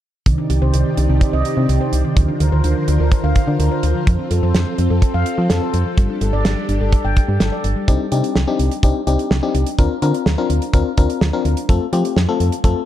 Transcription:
0.26 fm bass C2, string machine C3 C4 D#4 G4 D5, handpan D#3, kick, closed hi-hat
0.38 handpan D4
0.50 fm bass C2, handpan G4, closed hi-hat
0.62 fm bass C2, handpan C5
0.74 fm bass C2, closed hi-hat
0.86 handpan D#3
0.97 fm bass C2, handpan D4, closed hi-hat
1.09 fm bass C2, handpan G4
1.21 handpan C5, kick, closed hi-hat
1.33 fm bass C2, handpan D#5
1.45 closed hi-hat
1.57 fm bass C3, handpan D4
1.69 fm bass C2, handpan G4, closed hi-hat
1.81 handpan C5
1.93 fm bass C2, closed hi-hat
2.05 handpan D#3
2.17 fm bass D2, string machine D3 D4 F4 A#4 C5, handpan F3, kick, closed hi-hat
2.29 handpan D4
2.40 fm bass D2, handpan A#4, closed hi-hat
2.52 fm bass D2, handpan C5
2.64 fm bass D2, closed hi-hat
2.76 handpan F3
2.88 fm bass D2, handpan D4, closed hi-hat
3.00 fm bass D2, handpan A#4
3.12 handpan C5, kick, closed hi-hat
3.24 fm bass D2, handpan F5
3.36 kick, closed hi-hat
3.48 fm bass D3, handpan D4
3.59 fm bass D2, handpan A#4, closed hi-hat
3.71 handpan C5
3.83 fm bass D2, closed hi-hat
3.95 handpan F3
4.07 fm bass F2, handpan F3, string machine C4 A4, kick, closed hi-hat
4.19 handpan C4
4.31 fm bass F2, handpan A4, closed hi-hat
4.43 fm bass F2, handpan C5
4.54 fm bass F2, snare, closed hi-hat
4.67 handpan F3
4.78 fm bass F2, handpan C4, closed hi-hat
4.90 fm bass F2, handpan A4
5.02 handpan C5, kick, closed hi-hat
5.14 fm bass F2, handpan F5
5.26 closed hi-hat
5.38 fm bass F3, handpan C4
5.50 fm bass F2, handpan A4, snare, closed hi-hat
5.62 handpan C5
5.74 fm bass F2, closed hi-hat
5.86 handpan F3
5.97 fm bass G1, handpan G3, string machine D4 G4, kick, closed hi-hat
6.09 handpan D4
6.21 fm bass G1, handpan A4, closed hi-hat
6.33 fm bass G1, handpan D5
6.45 fm bass G1, snare, closed hi-hat
6.57 handpan G3
6.69 fm bass G1, handpan D4, closed hi-hat
6.81 fm bass G1, handpan A4
6.93 handpan D5, kick, closed hi-hat
7.05 fm bass G1, handpan G5
7.16 kick, closed hi-hat
7.28 fm bass G2, handpan D4
7.40 fm bass G1, handpan A4, snare, closed hi-hat
7.52 handpan D5
7.64 fm bass G1, closed hi-hat
7.76 handpan G3
7.88 fm bass C2, fm electric piano C4 D4 D#4 G4, kick, closed hi-hat
8.12 fm bass C3, fm electric piano C4 D4 D#4 G4, closed hi-hat
8.24 closed hi-hat
8.36 fm bass C2, snare
8.48 fm electric piano C4 D4 D#4 G4
8.59 fm bass C2, closed hi-hat
8.71 closed hi-hat
8.83 fm bass C2, fm electric piano C4 D4 D#4 G4, kick, closed hi-hat
9.07 fm bass C2, fm electric piano C4 D4 D#4 G4, closed hi-hat
9.19 closed hi-hat
9.31 fm bass C2, snare
9.43 fm electric piano C4 D4 D#4 G4
9.55 fm bass C2, closed hi-hat
9.66 closed hi-hat
9.78 fm bass D2, fm electric piano C4 D4 F4 A#4, kick, closed hi-hat
10.02 fm bass D3, fm electric piano C4 D4 F4 A#4, closed hi-hat
10.14 closed hi-hat
10.26 fm bass D2, snare
10.38 fm electric piano C4 D4 F4 A#4
10.50 fm bass D2, closed hi-hat
10.62 closed hi-hat
10.74 fm bass D2, fm electric piano C4 D4 F4 A#4, kick, closed hi-hat
10.97 fm bass D2, fm electric piano C4 D4 F4 A#4, kick, closed hi-hat
11.10 closed hi-hat
11.21 fm bass D2, snare
11.33 fm electric piano C4 D4 F4 A#4
11.45 fm bass D2, closed hi-hat
11.57 closed hi-hat
11.69 fm bass F2, fm electric piano A3 C4 F4 A4, kick, closed hi-hat
11.93 fm bass F3, fm electric piano A3 C4 F4 G4, closed hi-hat
12.05 closed hi-hat
12.16 fm bass F2, snare
12.29 fm electric piano A3 C4 F4 A4
12.40 fm bass F2, closed hi-hat
12.52 closed hi-hat
12.64 fm bass F2, fm electric piano A3 C4 F4 A4, kick, closed hi-hat

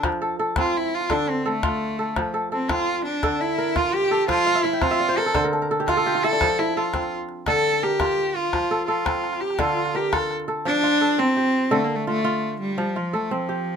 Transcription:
Already playing: kora C4 F4 A4
0.03 kora F3, calabash thump, calabash click
0.12 calabash click
0.22 kora A4
0.39 kora A4
0.56 kora C4, cello F4, calabash thump, calabash click
0.66 calabash click
0.77 cello E4
0.94 cello F4
1.01 calabash click
1.10 kora D3 A4, cello D4, calabash thump, calabash click
1.28 cello C4, calabash click
1.46 cello A3, kora A4
1.63 kora F4, calabash thump, calabash click
1.99 kora A4
2.16 kora F3, calabash thump, calabash click
2.34 kora A4
2.52 cello C4, kora A4
2.69 kora C4, cello F4, calabash thump, calabash click
2.79 calabash click
3.05 cello D4, calabash click
3.23 kora D3 A4, calabash thump, calabash click
3.40 cello E4
3.58 kora A#4
3.76 kora F4, cello F4, calabash thump, calabash click
3.94 cello G4
4.11 kora A4
4.28 kora F3, cello F4, calabash thump, calabash click
4.47 kora F5
4.55 kora E5
4.64 cello E4, kora F5
4.73 kora G5
4.82 kora C4 F5, cello F4, calabash thump, calabash click
4.91 kora E5, calabash click
5.00 kora D5
5.09 kora C5
5.17 cello A4, kora A#4, calabash click
5.26 kora A4
5.35 kora D3 C5, calabash thump, calabash click
5.44 kora A#4
5.53 kora A4
5.62 kora A#4
5.71 kora A4
5.80 kora G4
5.88 cello F4, kora F4, calabash thump, calabash click
5.97 kora A4
6.06 kora G4
6.15 kora F4
6.23 kora E4, cello A4
6.33 kora D4
6.41 kora F3, calabash thump, calabash click
6.59 cello E4, kora A4
6.77 cello F4, kora A4
6.94 kora C4, calabash thump, calabash click
7.03 calabash click
7.29 calabash click
7.46 kora D3 A4, cello A4, calabash thump, calabash click
7.83 cello G4, kora A#4
8.00 kora F4, calabash thump, calabash click
8.35 cello F4
8.53 kora F3, calabash thump, calabash click
8.71 kora A4
8.87 cello F4, kora A4
9.06 kora C4, calabash thump, calabash click
9.15 calabash click
9.24 calabash click
9.33 calabash click
9.40 cello G4, calabash click
9.50 calabash click
9.59 kora D3 A4, cello F4, calabash thump, calabash click
9.77 calabash click
9.86 calabash click
9.95 cello G4, kora A#4
10.12 kora F4, cello A4, calabash thump, calabash click
10.31 calabash click
10.40 calabash click
10.48 kora A4, calabash click
10.65 kora F3, cello D4
10.83 kora F4
11.01 kora A4
11.19 kora C4, cello C4
11.37 kora G4
11.71 kora D3 A4, cello A3
11.84 cello A#3
11.95 cello A3
12.07 cello A3, kora F4
12.24 kora F4
12.61 cello G3
12.78 kora F3
12.96 cello F3, kora F4
13.13 cello A3, kora A4
13.31 cello F3, kora C4
13.49 kora G4

